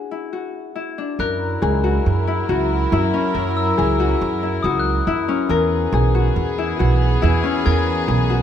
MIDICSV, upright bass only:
0, 0, Header, 1, 2, 480
1, 0, Start_track
1, 0, Tempo, 431034
1, 1330, Time_signature, 5, 2, 24, 8
1, 9380, End_track
2, 0, Start_track
2, 0, Title_t, "Upright bass"
2, 0, Program_c, 0, 32
2, 1325, Note_on_c, 0, 42, 86
2, 1723, Note_off_c, 0, 42, 0
2, 1809, Note_on_c, 0, 37, 100
2, 2206, Note_off_c, 0, 37, 0
2, 2297, Note_on_c, 0, 42, 83
2, 2690, Note_off_c, 0, 42, 0
2, 2775, Note_on_c, 0, 37, 87
2, 3169, Note_off_c, 0, 37, 0
2, 3253, Note_on_c, 0, 42, 102
2, 3450, Note_off_c, 0, 42, 0
2, 3729, Note_on_c, 0, 42, 89
2, 4126, Note_off_c, 0, 42, 0
2, 4217, Note_on_c, 0, 37, 93
2, 4610, Note_off_c, 0, 37, 0
2, 4693, Note_on_c, 0, 42, 93
2, 5088, Note_off_c, 0, 42, 0
2, 5168, Note_on_c, 0, 37, 93
2, 5565, Note_off_c, 0, 37, 0
2, 5645, Note_on_c, 0, 42, 91
2, 5845, Note_off_c, 0, 42, 0
2, 6118, Note_on_c, 0, 40, 97
2, 6519, Note_off_c, 0, 40, 0
2, 6598, Note_on_c, 0, 35, 97
2, 6999, Note_off_c, 0, 35, 0
2, 7084, Note_on_c, 0, 40, 89
2, 7482, Note_off_c, 0, 40, 0
2, 7574, Note_on_c, 0, 35, 96
2, 7968, Note_off_c, 0, 35, 0
2, 8055, Note_on_c, 0, 40, 101
2, 8251, Note_off_c, 0, 40, 0
2, 8530, Note_on_c, 0, 40, 96
2, 8926, Note_off_c, 0, 40, 0
2, 9000, Note_on_c, 0, 35, 99
2, 9380, Note_off_c, 0, 35, 0
2, 9380, End_track
0, 0, End_of_file